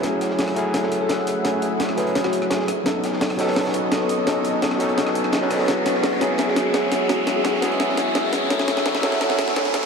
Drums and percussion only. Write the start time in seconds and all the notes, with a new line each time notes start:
0.03 snare, closed hi-hat
0.21 snare, closed hi-hat
0.30 snare
0.38 snare, closed hi-hat, open hi-hat
0.48 cross-stick, snare
0.56 snare, closed hi-hat
0.74 cross-stick, snare, closed hi-hat
0.83 snare
0.92 closed hi-hat
1.09 snare, closed hi-hat
1.19 snare
1.27 closed hi-hat
1.45 snare, closed hi-hat
1.62 closed hi-hat
1.80 snare, closed hi-hat
1.89 cross-stick, snare
1.97 snare, closed hi-hat
2.07 closed hi-hat
2.15 snare, closed hi-hat
2.24 cross-stick, snare
2.33 closed hi-hat
2.42 cross-stick
2.50 snare, closed hi-hat
2.59 snare
2.68 cross-stick, closed hi-hat
2.86 snare, closed hi-hat
3.04 snare, closed hi-hat
3.13 snare
3.21 snare, closed hi-hat, open hi-hat
3.30 cross-stick, snare
3.39 snare, closed hi-hat, open hi-hat
3.47 snare, open hi-hat
3.56 cross-stick, snare, closed hi-hat, open hi-hat
3.65 snare, open hi-hat
3.74 closed hi-hat
3.91 snare, closed hi-hat
4.01 snare
4.09 closed hi-hat
4.27 snare, closed hi-hat
4.45 closed hi-hat
4.62 snare, closed hi-hat
4.71 cross-stick, snare
4.79 snare, closed hi-hat
4.89 closed hi-hat
4.98 snare, closed hi-hat
5.07 cross-stick, snare
5.15 closed hi-hat
5.24 cross-stick
5.32 snare, closed hi-hat
5.42 snare
5.50 cross-stick, snare, closed hi-hat, open hi-hat
5.59 snare, open hi-hat
5.68 snare, closed hi-hat
5.86 snare, closed hi-hat
5.94 snare
6.03 snare, closed hi-hat, open hi-hat
6.13 snare
6.21 snare, closed hi-hat
6.38 snare, closed hi-hat
6.48 snare
6.56 snare, closed hi-hat
6.74 snare, closed hi-hat
6.83 snare
6.92 snare, closed hi-hat
7.09 snare, closed hi-hat
7.27 snare, closed hi-hat
7.44 snare, closed hi-hat
7.54 snare
7.62 snare, closed hi-hat
7.71 closed hi-hat
7.80 snare, closed hi-hat
7.89 snare
7.97 snare, closed hi-hat
8.15 snare, closed hi-hat
8.23 snare
8.33 snare, closed hi-hat
8.50 snare, closed hi-hat
8.59 snare
8.68 snare, closed hi-hat
8.77 snare
8.86 snare, closed hi-hat, open hi-hat
8.95 snare
9.03 snare, closed hi-hat, open hi-hat
9.12 snare
9.21 snare, closed hi-hat
9.30 snare
9.39 snare, closed hi-hat
9.48 snare
9.56 snare, closed hi-hat
9.65 snare
9.74 snare, closed hi-hat